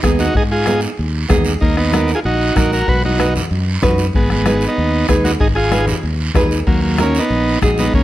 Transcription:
0.03 0.29 D#2 medium
0.03 0.25 B3 medium
0.03 0.25 D#4 medium
0.03 0.25 G#4 loud
0.03 bombo low medium
0.03 bombo rim medium
0.03 high conga medium
0.03 short guiro medium
0.19 0.34 D#4 medium
0.19 0.36 F#4 medium
0.19 short guiro medium
0.35 0.85 G#2 medium
0.35 0.43 D#4 medium
0.35 0.43 G#4 loud
0.35 bombo low medium
0.35 high conga soft
0.35 long guiro medium
0.52 0.81 F4 medium
0.52 0.81 G#4 medium
0.66 0.89 B3 medium
0.66 0.89 D#4 medium
0.66 0.89 G#4 medium
0.66 bombo rim medium
0.66 high conga medium
0.66 short guiro medium
0.81 short guiro medium
0.97 1.24 D#2 medium
0.97 high conga soft
0.97 long guiro medium
1.29 1.55 D#2 medium
1.29 1.51 B3 medium
1.29 1.52 D#4 medium
1.29 1.52 G#4 loud
1.29 bombo low medium
1.29 bombo rim medium
1.29 high conga medium
1.29 low conga medium
1.29 short guiro medium
1.45 short guiro medium
1.60 2.12 D#2 medium
1.60 1.76 A#3 medium
1.60 1.76 D#4 medium
1.60 bombo low medium
1.60 high conga soft
1.60 long guiro medium
1.77 2.12 B3 medium
1.77 2.11 D#4 medium
1.77 bombo rim medium
1.92 2.15 D#4 medium
1.92 2.15 F#4 medium
1.92 2.15 A#4 medium
1.92 bombo rim medium
1.92 high conga medium
1.92 short guiro medium
2.08 short guiro medium
2.15 2.20 F4 medium
2.15 2.19 G#4 medium
2.24 2.50 A#1 medium
2.24 2.54 D#4 medium
2.24 2.56 F#4 loud
2.24 high conga soft
2.24 long guiro medium
2.55 2.82 A#1 loud
2.55 2.78 D#4 medium
2.55 2.71 D#4 medium
2.55 2.78 F#4 medium
2.55 2.72 F#4 loud
2.55 2.78 A#4 medium
2.55 bombo low medium
2.55 bombo rim medium
2.55 high conga medium
2.55 short guiro medium
2.73 2.87 F#4 medium
2.73 2.89 A#4 medium
2.73 short guiro medium
2.88 3.39 B1 loud
2.88 3.03 F#4 medium
2.88 3.03 B4 loud
2.88 bombo low medium
2.88 high conga soft
2.88 long guiro medium
3.04 3.34 D#4 medium
3.04 3.34 F#4 medium
3.04 high conga medium
3.18 3.41 D#4 medium
3.18 3.41 F#4 medium
3.18 3.41 B4 medium
3.18 bombo rim medium
3.18 high conga medium
3.18 short guiro medium
3.36 low conga medium
3.36 short guiro medium
3.51 3.76 F#2 medium
3.51 high conga soft
3.51 long guiro medium
3.82 4.08 F#2 medium
3.82 4.05 D#4 medium
3.82 4.05 F#4 medium
3.82 4.05 B4 medium
3.82 bombo low medium
3.82 bombo rim medium
3.82 high conga medium
3.82 low conga medium
3.82 short guiro medium
3.98 short guiro medium
4.13 4.65 G#1 medium
4.13 4.30 G#3 medium
4.13 4.30 B3 medium
4.13 bombo low medium
4.13 high conga soft
4.13 long guiro medium
4.30 4.65 G#3 medium
4.30 4.67 B3 medium
4.30 bombo rim medium
4.30 high conga medium
4.45 4.68 D#4 medium
4.45 4.68 G#4 medium
4.45 4.68 B4 medium
4.45 bombo rim medium
4.45 high conga medium
4.45 short guiro medium
4.61 short guiro medium
4.68 5.07 B3 medium
4.68 5.07 D#4 medium
4.77 5.03 D#2 medium
4.77 high conga soft
4.77 long guiro medium
5.08 5.35 D#2 medium
5.08 5.31 D#4 medium
5.08 5.31 G#4 medium
5.08 5.31 B4 medium
5.08 bombo low medium
5.08 bombo rim medium
5.08 high conga medium
5.08 short guiro medium
5.24 5.32 D#4 medium
5.24 5.32 F#4 medium
5.24 high conga medium
5.24 short guiro medium
5.40 5.91 G#1 loud
5.40 5.48 D#4 medium
5.40 5.47 G#4 loud
5.40 bombo low medium
5.40 high conga soft
5.40 long guiro medium
5.55 5.86 F4 medium
5.55 5.85 G#4 medium
5.55 bombo rim medium
5.72 5.94 D#4 medium
5.72 5.94 G#4 medium
5.72 5.95 B4 medium
5.72 bombo rim medium
5.72 high conga medium
5.72 short guiro medium
5.87 low conga medium
5.87 short guiro medium
6.03 6.29 D#2 medium
6.03 high conga soft
6.03 long guiro medium
6.35 6.61 D#2 medium
6.35 6.58 D#4 medium
6.35 6.58 G#4 medium
6.35 6.58 B4 loud
6.35 bombo low medium
6.35 bombo rim medium
6.35 high conga medium
6.35 low conga medium
6.35 short guiro medium
6.51 short guiro medium
6.67 7.18 D#2 medium
6.67 6.81 F#3 medium
6.67 6.81 A#3 loud
6.67 bombo low medium
6.67 high conga soft
6.67 long guiro medium
6.82 7.02 F#3 medium
6.82 7.02 A#3 medium
6.98 7.21 D#4 medium
6.98 7.21 F#4 medium
6.98 7.21 A#4 medium
6.98 bombo rim medium
6.98 high conga medium
6.98 short guiro medium
7.02 7.18 A#3 medium
7.02 7.19 C#4 medium
7.15 short guiro medium
7.19 7.59 B3 medium
7.19 7.59 D#4 loud
7.30 7.56 A#1 medium
7.30 high conga soft
7.30 long guiro medium
7.62 7.87 A#1 medium
7.62 7.84 D#4 medium
7.62 7.84 F#4 medium
7.62 7.85 G#4 loud
7.62 bombo low medium
7.62 bombo rim medium
7.62 high conga medium
7.62 short guiro medium
7.78 7.93 B3 medium
7.78 7.93 D#4 medium
7.78 high conga medium
7.78 short guiro medium
7.94 8.03 D#2 medium
7.94 8.03 A#3 medium
7.94 8.03 C#4 loud
7.94 bombo low medium
7.94 high conga soft
7.94 long guiro medium

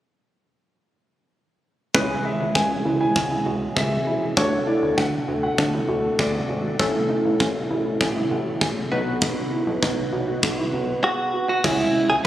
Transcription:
1.94 2.16 C#2 loud
1.94 4.33 E3 medium
1.94 4.33 G#3 medium
1.94 2.10 C#4 loud
1.94 4.33 C#4 medium
1.94 4.33 G#4 medium
1.94 2.14 B4 medium
1.94 kick loud
2.25 2.41 D#3 medium
2.25 2.44 E5 medium
2.40 2.51 C#2 medium
2.55 2.76 C#2 loud
2.55 2.71 C#4 medium
2.55 2.65 G#5 medium
2.55 kick loud
2.85 3.07 C#2 medium
2.85 2.93 E4 medium
3.01 3.08 E4 medium
3.01 3.43 G#5 medium
3.16 3.37 C#2 medium
3.16 3.24 C#4 medium
3.16 kick loud
3.31 3.39 E4 medium
3.46 3.67 C#2 medium
3.46 3.62 F#4 medium
3.76 3.98 C#2 loud
3.76 3.92 G#4 medium
3.76 4.19 E5 medium
3.76 kick loud
4.07 4.28 B1 medium
4.07 4.22 E4 medium
4.37 4.58 D2 loud
4.37 6.75 A3 medium
4.37 6.75 D4 medium
4.37 4.53 D4 medium
4.37 6.75 F#4 medium
4.37 6.75 A4 medium
4.37 4.56 C#5 loud
4.37 kick loud
4.67 4.83 E4 medium
4.67 4.87 D5 medium
4.82 4.93 D2 loud
4.97 5.19 D2 loud
4.97 5.13 D4 medium
4.97 5.07 F#5 medium
4.97 kick medium
5.28 5.49 D2 medium
5.28 5.36 F#4 medium
5.43 5.51 F#4 medium
5.43 5.86 F#5 medium
5.58 5.80 D2 medium
5.58 5.66 D4 medium
5.58 kick loud
5.73 5.81 E4 medium
5.89 6.10 D2 loud
5.89 6.04 F#4 medium
6.19 6.40 D2 loud
6.19 6.34 G#4 medium
6.19 6.62 D5 medium
6.19 kick loud
6.49 6.70 G#1 medium
6.49 6.65 F#4 medium
6.79 7.01 A1 loud
6.79 8.88 A3 medium
6.79 6.95 C#4 medium
6.79 8.88 C#4 medium
6.79 8.88 E4 medium
6.79 8.88 A4 medium
6.79 kick loud
7.10 7.25 D#4 medium
7.25 7.36 A1 medium
7.40 7.61 A1 medium
7.40 7.56 C#4 medium
7.40 kick loud
7.70 7.92 A1 medium
7.70 7.78 E4 medium
7.86 7.93 E4 medium
8.01 8.22 A1 loud
8.01 8.09 C#4 medium
8.01 kick loud
8.16 8.24 E4 medium
8.31 8.52 A1 loud
8.31 8.47 F#4 medium
8.61 8.83 A1 loud
8.61 8.77 G#4 medium
8.61 kick loud
8.91 9.34 B1 medium
8.91 11.60 B3 medium
8.91 11.60 D#4 medium
8.91 9.07 F#4 medium
8.91 11.60 F#4 medium
8.91 11.60 B4 medium
9.22 9.37 D#4 loud
9.22 kick loud
9.52 9.68 E4 medium
9.67 9.78 B1 loud
9.82 10.04 B1 loud
9.82 9.98 D#4 medium
9.82 kick loud
10.13 10.34 B1 loud
10.13 10.21 F#4 medium
10.28 10.36 F#4 medium
10.43 10.64 B1 loud
10.43 10.51 D#4 medium
10.43 kick loud
10.58 10.66 E4 medium
10.73 10.95 B1 loud
10.73 10.89 F#4 medium
11.04 11.48 F#4 medium
11.04 11.19 G#4 medium
11.34 11.50 F#4 medium
11.49 11.64 F#4 medium
11.64 11.85 C#2 loud
11.64 12.27 G#3 medium
11.64 12.27 C#4 medium
11.64 12.27 E4 medium
11.64 12.11 E4 medium
11.64 12.27 G#4 medium
11.64 kick loud
11.64 crash medium
12.10 12.20 C#2 medium
12.10 12.15 G#4 medium

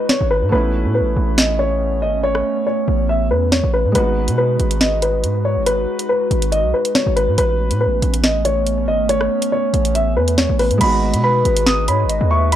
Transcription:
0.00 0.47 G#3 medium
0.00 0.49 G#3 medium
0.00 0.48 B3 medium
0.00 0.49 D#4 medium
0.00 0.49 F#4 medium
0.00 0.50 F#4 medium
0.00 0.49 B4 medium
0.09 0.26 C#5 medium
0.09 snare loud
0.21 0.44 G#1 loud
0.31 0.48 B4 medium
0.42 0.52 G#2 loud
0.49 0.86 A1 loud
0.49 3.89 A3 medium
0.49 3.92 A3 medium
0.49 3.90 B3 medium
0.49 3.92 B3 medium
0.49 3.92 C#4 medium
0.49 0.93 B4 loud
0.53 3.92 C#4 medium
0.53 3.93 E4 medium
0.85 1.02 A2 loud
0.95 1.35 B4 medium
1.01 1.16 A1 loud
1.16 2.04 A1 loud
1.38 1.55 D#5 medium
1.38 snare loud
1.59 1.99 C#5 medium
2.02 2.43 G#1 loud
2.02 2.19 D#5 medium
2.24 2.64 C#5 loud
2.35 cross-stick medium
2.67 3.07 C#5 medium
2.88 3.32 A1 loud
3.09 3.26 E5 medium
3.31 3.62 E2 loud
3.31 3.48 B4 medium
3.52 3.69 C#5 medium
3.52 snare loud
3.63 3.86 A1 loud
3.74 3.91 B4 medium
3.85 3.95 A2 loud
3.92 4.29 G#1 loud
3.92 7.32 G#3 medium
3.92 7.34 G#3 medium
3.92 7.33 B3 medium
3.92 7.35 D#4 medium
3.92 7.34 F#4 medium
3.92 4.35 B4 loud
3.92 7.34 B4 medium
3.92 closed hi-hat medium
3.96 7.34 D#4 medium
3.96 7.35 F#4 medium
4.28 4.58 B2 loud
4.28 closed hi-hat medium
4.38 4.78 B4 medium
4.59 5.25 G#1 loud
4.59 closed hi-hat medium
4.71 closed hi-hat medium
4.81 4.98 D#5 medium
4.81 snare loud
5.02 5.43 B4 medium
5.02 closed hi-hat medium
5.24 5.58 G#2 loud
5.24 closed hi-hat medium
5.45 5.62 C#5 medium
5.56 5.86 G#1 loud
5.66 6.07 B4 loud
5.66 closed hi-hat medium
5.99 closed hi-hat medium
6.09 6.50 B4 medium
6.31 6.65 G#1 loud
6.31 closed hi-hat medium
6.42 closed hi-hat medium
6.52 6.69 D#5 medium
6.52 closed hi-hat medium
6.64 6.73 B1 medium
6.74 6.91 B4 medium
6.85 closed hi-hat medium
6.95 7.12 C#5 medium
6.95 snare loud
7.06 7.29 G#1 loud
7.16 7.33 B4 loud
7.16 closed hi-hat medium
7.28 7.37 G#2 loud
7.38 7.72 A1 loud
7.38 10.77 A3 medium
7.38 10.77 B3 medium
7.38 10.77 C#4 medium
7.38 7.78 B4 loud
7.38 closed hi-hat medium
7.71 7.88 A2 loud
7.71 closed hi-hat medium
7.81 8.21 B4 medium
7.86 8.01 A1 loud
8.02 8.89 A1 loud
8.02 closed hi-hat medium
8.14 closed hi-hat medium
8.24 8.41 D#5 medium
8.24 snare loud
8.45 8.85 C#5 medium
8.45 closed hi-hat medium
8.67 closed hi-hat medium
8.88 9.29 G#1 loud
8.88 9.05 D#5 medium
9.09 9.50 C#5 loud
9.09 closed hi-hat medium
9.21 cross-stick medium
9.42 closed hi-hat medium
9.52 9.93 C#5 medium
9.74 10.18 A1 loud
9.74 closed hi-hat medium
9.85 closed hi-hat medium
9.95 10.12 E5 medium
9.95 closed hi-hat medium
10.16 10.48 E2 loud
10.16 10.34 B4 medium
10.28 closed hi-hat medium
10.38 10.55 C#5 medium
10.38 snare loud
10.49 10.72 A1 loud
10.59 10.76 B4 medium
10.59 closed hi-hat medium
10.59 open hi-hat medium
10.71 10.80 A2 loud
10.71 closed hi-hat medium
10.78 11.15 G#1 loud
10.78 12.56 G#3 medium
10.78 12.56 B3 medium
10.78 12.56 D#4 medium
10.78 12.56 F#4 medium
10.78 12.56 B4 medium
10.78 11.21 D#5 medium
10.78 11.21 B5 loud
10.78 closed hi-hat medium
10.78 crash loud
10.82 12.56 D#4 medium
10.82 12.56 F#4 medium
11.14 11.43 B2 loud
11.14 closed hi-hat medium
11.24 11.84 B4 medium
11.24 11.64 B5 medium
11.45 11.89 G#1 loud
11.45 closed hi-hat medium
11.57 closed hi-hat medium
11.66 11.83 D#6 medium
11.66 snare loud
11.88 12.06 G#2 loud
11.88 12.08 C#5 medium
11.88 12.28 B5 medium
11.88 closed hi-hat medium
12.04 12.20 G#1 loud
12.09 12.30 D#5 medium
12.09 closed hi-hat medium
12.21 12.56 D#2 loud
12.31 12.51 E5 medium
12.31 12.48 C#6 medium
12.52 12.56 D#5 loud
12.52 12.56 B5 loud
12.52 closed hi-hat medium

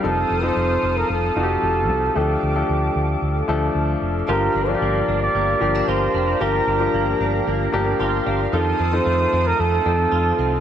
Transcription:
0.00 0.23 F1 medium
0.00 0.36 F3 medium
0.00 0.36 C4 medium
0.00 0.37 D#4 medium
0.00 0.37 A4 medium
0.00 4.24 A4 medium
0.00 2.12 F5 medium
0.00 2.14 D#6 medium
0.04 0.46 A4 medium
0.30 0.49 F1 medium
0.42 1.21 F3 medium
0.42 1.21 C4 medium
0.42 1.21 D#4 medium
0.42 1.21 A4 medium
0.42 0.99 C5 loud
0.56 0.76 F1 medium
0.83 1.02 F1 medium
0.97 1.10 A#4 medium
1.10 1.29 F1 medium
1.10 2.18 A4 medium
1.36 1.55 F1 medium
1.36 2.02 F3 medium
1.36 2.03 C4 medium
1.36 2.03 D#4 medium
1.36 1.43 F#4 medium
1.43 2.06 G4 medium
1.63 1.90 F1 medium
1.90 2.09 C2 medium
2.15 2.35 D2 medium
2.15 2.49 F3 medium
2.15 2.49 A3 medium
2.15 2.49 D4 medium
2.15 3.76 G4 medium
2.15 2.49 A4 medium
2.15 10.60 F5 medium
2.15 4.26 D6 medium
2.43 2.62 D2 medium
2.55 3.33 F3 medium
2.55 3.33 A3 medium
2.55 3.33 D4 medium
2.55 3.33 A4 medium
2.69 2.88 D2 medium
2.96 3.15 D2 medium
3.22 3.41 D2 medium
3.48 3.68 D2 medium
3.48 4.15 F3 medium
3.48 4.15 A3 medium
3.48 4.15 D4 medium
3.48 4.15 A4 medium
3.75 3.94 D2 medium
4.02 4.21 F1 medium
4.28 4.47 G1 loud
4.28 4.61 F3 medium
4.28 6.40 F3 medium
4.28 4.61 A#3 medium
4.28 4.62 D4 medium
4.28 5.88 F4 medium
4.28 8.49 G4 medium
4.28 4.62 G4 medium
4.28 4.70 A#4 medium
4.28 8.49 A#5 medium
4.55 4.74 G1 medium
4.55 5.07 D4 medium
4.67 5.45 F3 medium
4.67 5.45 A#3 medium
4.67 5.46 D4 medium
4.67 4.74 F4 medium
4.67 5.22 D5 loud
4.75 5.49 G4 medium
4.82 5.01 G1 medium
4.82 5.34 A#3 medium
5.08 5.27 G1 medium
5.08 5.61 D4 medium
5.22 5.90 D5 medium
5.35 5.54 G1 medium
5.35 6.92 A#3 medium
5.60 5.80 G1 medium
5.60 6.27 F3 medium
5.60 6.27 A#3 medium
5.60 5.75 C4 medium
5.60 6.27 D4 medium
5.60 6.28 G4 medium
5.75 6.13 D4 soft
5.88 6.07 G1 medium
5.88 6.41 F4 medium
5.88 6.43 C5 medium
6.14 6.33 F1 medium
6.14 6.66 D4 medium
6.40 6.60 G1 medium
6.40 6.73 F3 medium
6.40 8.52 F3 medium
6.40 6.74 A#3 medium
6.40 6.74 D4 medium
6.40 7.99 F4 medium
6.40 6.74 G4 medium
6.40 8.00 A#4 medium
6.67 6.86 G1 medium
6.67 7.19 D4 medium
6.80 7.58 F3 medium
6.80 7.58 A#3 medium
6.80 7.58 D4 medium
6.80 7.58 G4 medium
6.94 7.13 G1 medium
6.94 7.46 A#3 medium
7.20 7.39 G1 medium
7.20 7.72 D4 medium
7.47 7.66 G1 loud
7.47 8.58 A#3 medium
7.72 7.93 G1 medium
7.72 8.39 F3 medium
7.72 8.40 A#3 medium
7.72 8.25 D4 medium
7.72 8.40 D4 medium
7.72 8.40 G4 medium
7.72 7.98 A#5 medium
8.00 8.19 G1 medium
8.00 8.53 F4 medium
8.00 8.25 G5 medium
8.26 8.46 G1 medium
8.26 8.58 D4 medium
8.26 8.51 F5 medium
8.52 8.72 F2 medium
8.52 10.60 D#3 medium
8.52 8.86 F3 medium
8.52 8.86 C4 medium
8.52 8.86 D#4 medium
8.52 10.10 F4 medium
8.52 10.60 A4 medium
8.52 8.86 A4 medium
8.52 8.96 A4 medium
8.52 10.60 D#6 medium
8.79 8.99 F2 medium
8.79 9.32 C4 medium
8.92 9.70 F3 medium
8.92 9.70 C4 medium
8.92 9.71 D#4 medium
8.92 9.71 A4 medium
8.92 9.48 C5 loud
9.06 9.25 F2 medium
9.06 9.58 A3 medium
9.32 9.52 F2 medium
9.32 9.85 C4 medium
9.47 9.62 A#4 medium
9.59 9.78 F2 medium
9.59 10.60 A3 medium
9.59 10.60 A4 medium
9.85 10.05 F2 medium
9.85 10.52 F3 medium
9.85 10.38 C4 medium
9.85 10.52 C4 medium
9.85 10.52 D#4 medium
9.85 10.53 A4 medium
10.12 10.31 F2 medium
10.12 10.60 F4 medium
10.38 10.58 C2 medium
10.38 10.60 C4 medium

